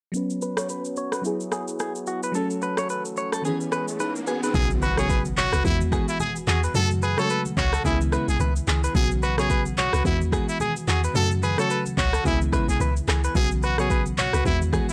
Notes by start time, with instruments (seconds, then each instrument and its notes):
0.12 fm electric piano F#3 B3 C#4, french horn section F#3 B3 C#4 B4, shaker
0.17 fm electric piano B4
0.30 shaker
0.42 clean electric guitar B4, shaker
0.57 clean electric guitar C#5, cross-stick, shaker
0.69 clean electric guitar B4, shaker
0.85 shaker
0.96 clean electric guitar C#5, shaker
1.12 clean electric guitar B4, cross-stick, shaker
1.22 fm electric piano F#3 B3 E4, french horn section E4 G#4, shaker
1.27 fm electric piano G#4
1.40 shaker
1.52 clean electric guitar G#4, cross-stick, shaker
1.68 shaker
1.79 clean electric guitar G#4, cross-stick, shaker
1.95 shaker
2.07 clean electric guitar F#4, shaker
2.23 clean electric guitar B4, shaker
2.32 fm electric piano F#3 A3 C#4, french horn section F#3 A3 C#4 A4, clean electric guitar A4, riser, shaker
2.37 fm electric piano A4
2.50 shaker
2.62 clean electric guitar B4, shaker
2.77 clean electric guitar C#5, cross-stick, shaker
2.89 clean electric guitar B4, shaker
3.05 shaker
3.17 clean electric guitar C#5, shaker
3.32 clean electric guitar A4, cross-stick, shaker
3.42 fm electric piano D#3 B3 C#4, french horn section E3 B3 C#4 G#4, clean electric guitar G#4, shaker
3.47 fm electric piano E3 G#4
3.61 shaker
3.72 clean electric guitar B4, cross-stick, shaker
3.88 shaker
4.00 fm electric piano D#4 G#4, clean electric guitar B4, shaker
4.16 shaker
4.27 fm electric piano F#4 B4, clean electric guitar G#4, shaker
4.43 fm electric piano D#4 G#4, clean electric guitar B4, shaker
4.53 log drum bass B1, fm electric piano C#3 F#3 B3 F#4, trumpet G#4, kick, impact, low conga, shaker
4.70 high conga, shaker
4.81 trumpet F#4, clean electric guitar B4, high conga, shaker
4.97 fm electric piano C#3 F#3 B3 F#4, trumpet G#4, clean electric guitar C#5, cross-stick, shaker
5.10 clean electric guitar B4, kick, shaker
5.25 high conga, shaker
5.37 trumpet F#4, clean electric guitar C#5, clap, low conga, shaker
5.53 log drum bass C#2, clean electric guitar B4, cross-stick, shaker
5.63 log drum bass E2, fm electric piano E3 G#3 B3 F#4, trumpet E4, kick, low conga, shaker
5.80 high conga, shaker
5.91 fm electric piano E3 G#3 B3 F#4, clean electric guitar G#4, kick, cross-stick, shaker
6.08 trumpet E4, shaker
6.20 trumpet G#4, clean electric guitar G#4, high conga, low conga, shaker
6.36 shaker
6.47 log drum bass E2, clean electric guitar F#4, trumpet G#4, clap, high conga, shaker
6.63 clean electric guitar B4, shaker
6.74 log drum bass F#2, fm electric piano C#3 F#3 A3 F#4, trumpet A4, clean electric guitar A4, low conga, shaker
6.91 high conga, shaker
7.01 trumpet G#4, clean electric guitar B4, high conga, shaker
7.17 fm electric piano C#3 F#3 G#3 F#4, trumpet A4, clean electric guitar C#5, cross-stick, shaker
7.25 fm electric piano A3
7.30 clean electric guitar B4, shaker
7.45 high conga, shaker
7.57 log drum bass C#2, trumpet F#4, clean electric guitar C#5, kick, clap, low conga, shaker
7.73 clean electric guitar A4, cross-stick, shaker
7.84 log drum bass C#2, fm electric piano C#3 G#3 B3 E4, trumpet E4, clean electric guitar G#4, kick, low conga, shaker
8.00 high conga, shaker
8.11 fm electric piano C#3 G#3 B3 E4, clean electric guitar B4, cross-stick, shaker
8.28 log drum bass B1, trumpet G#4, shaker
8.40 log drum bass C#2, clean electric guitar B4, high conga, low conga, shaker
8.56 shaker
8.67 log drum bass C#2, clean electric guitar G#4, clap, high conga, shaker
8.84 clean electric guitar B4, shaker
8.94 log drum bass B1, fm electric piano C#3 F#3 B3 F#4, trumpet G#4, kick, low conga, shaker
9.11 high conga, shaker
9.22 trumpet F#4, clean electric guitar B4, high conga, shaker
9.37 fm electric piano C#3 F#3 B3 F#4, trumpet G#4, clean electric guitar C#5, cross-stick, shaker
9.50 clean electric guitar B4, kick, shaker
9.66 high conga, shaker
9.77 trumpet F#4, clean electric guitar C#5, clap, low conga, shaker
9.93 log drum bass C#2, clean electric guitar B4, cross-stick, shaker
10.04 log drum bass E2, fm electric piano E3 G#3 B3 F#4, trumpet E4, kick, low conga, shaker
10.20 high conga, shaker
10.31 fm electric piano E3 G#3 B3 F#4, clean electric guitar G#4, kick, cross-stick, shaker
10.49 trumpet E4, shaker
10.60 trumpet G#4, clean electric guitar G#4, high conga, low conga, shaker
10.76 shaker
10.87 log drum bass E2, clean electric guitar F#4, trumpet G#4, clap, high conga, shaker
11.04 clean electric guitar B4, shaker
11.14 log drum bass F#2, fm electric piano C#3 F#3 A3 F#4, trumpet A4, clean electric guitar A4, low conga, shaker
11.31 high conga, shaker
11.42 trumpet G#4, clean electric guitar B4, high conga, shaker
11.57 fm electric piano C#3 F#3 A3 F#4, trumpet A4, clean electric guitar C#5, cross-stick, shaker
11.70 clean electric guitar B4, shaker
11.86 high conga, shaker
11.97 log drum bass C#2, trumpet F#4, clean electric guitar C#5, kick, clap, low conga, shaker
12.13 clean electric guitar A4, cross-stick, shaker
12.24 log drum bass C#2, fm electric piano C#3 G#3 B3 E4, trumpet E4, clean electric guitar G#4, kick, low conga, shaker
12.41 high conga, shaker
12.52 fm electric piano C#3 G#3 B3 E4, clean electric guitar B4, kick, cross-stick, shaker
12.69 log drum bass B1, trumpet G#4, shaker
12.80 log drum bass C#2, clean electric guitar B4, high conga, low conga, shaker
12.96 shaker
13.08 log drum bass C#2, clean electric guitar G#4, cross-stick, clap, high conga, shaker
13.24 clean electric guitar B4, shaker
13.34 log drum bass B1, fm electric piano C#3 F#3 B3 F#4, trumpet G#4, kick, low conga, shaker
13.51 high conga, shaker
13.62 trumpet F#4, clean electric guitar B4, high conga, shaker
13.78 fm electric piano C#3 F#3 B3 F#4, trumpet G#4, clean electric guitar C#5, cross-stick, shaker
13.90 clean electric guitar B4, kick, shaker
14.06 high conga, shaker
14.18 trumpet F#4, clean electric guitar C#5, clap, open hi-hat, low conga, shaker
14.33 log drum bass C#2, clean electric guitar B4, cross-stick, shaker
14.44 log drum bass E2, fm electric piano E3 G#3 B3 F#4, trumpet E4, kick, low conga, shaker
14.61 high conga, shaker
14.72 fm electric piano E3 G#3 B3 F#4, clean electric guitar G#4, kick, cross-stick, shaker
14.89 trumpet E4, shaker